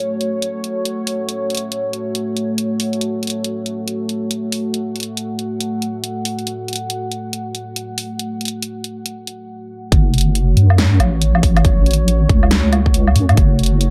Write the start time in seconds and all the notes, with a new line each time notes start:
Already playing: A3 F#4 C#5
0.21 closed hi-hat
0.42 closed hi-hat
0.64 closed hi-hat
0.85 closed hi-hat
1.07 open hi-hat
1.29 closed hi-hat
1.50 closed hi-hat
1.55 closed hi-hat
1.57 closed hi-hat
1.72 closed hi-hat
1.93 closed hi-hat
2.15 closed hi-hat
2.37 closed hi-hat
2.58 closed hi-hat
2.80 open hi-hat
2.93 closed hi-hat
3.01 F#5, closed hi-hat
3.23 closed hi-hat
3.27 closed hi-hat
3.30 closed hi-hat
3.44 closed hi-hat
3.66 closed hi-hat
3.88 closed hi-hat
4.09 closed hi-hat
4.31 closed hi-hat
4.52 open hi-hat
4.74 closed hi-hat
4.96 closed hi-hat
5.00 closed hi-hat
5.03 closed hi-hat
5.17 closed hi-hat
5.39 closed hi-hat
5.61 closed hi-hat
5.82 closed hi-hat
6.04 closed hi-hat
6.25 open hi-hat
6.39 closed hi-hat
6.47 closed hi-hat
6.68 closed hi-hat
6.73 closed hi-hat
6.76 closed hi-hat
6.90 closed hi-hat
7.12 closed hi-hat
7.33 closed hi-hat
7.55 closed hi-hat
7.76 closed hi-hat
7.98 open hi-hat
8.19 closed hi-hat
8.41 closed hi-hat
8.45 closed hi-hat
8.48 closed hi-hat
8.62 closed hi-hat
8.84 closed hi-hat
9.06 closed hi-hat
9.27 closed hi-hat
9.92 F#1 A3 F#4 C#5, kick, closed hi-hat
10.14 closed hi-hat
10.18 closed hi-hat
10.21 closed hi-hat
10.35 closed hi-hat
10.57 F#2, closed hi-hat
10.70 low woodblock
10.78 snare, closed hi-hat
11.00 A1, closed hi-hat, low woodblock
11.22 closed hi-hat
11.35 low woodblock
11.43 A1, kick, open hi-hat
11.57 closed hi-hat, low woodblock
11.65 kick, closed hi-hat
11.86 closed hi-hat
11.91 closed hi-hat
11.93 closed hi-hat
12.08 closed hi-hat
12.29 C#2, kick, closed hi-hat
12.43 low woodblock
12.51 snare, closed hi-hat
12.73 closed hi-hat, low woodblock
12.86 kick
12.94 closed hi-hat
13.07 low woodblock
13.16 F#2, open hi-hat
13.29 closed hi-hat, low woodblock
13.37 F#1 A4, kick, closed hi-hat
13.59 closed hi-hat
13.63 closed hi-hat
13.66 closed hi-hat
13.81 closed hi-hat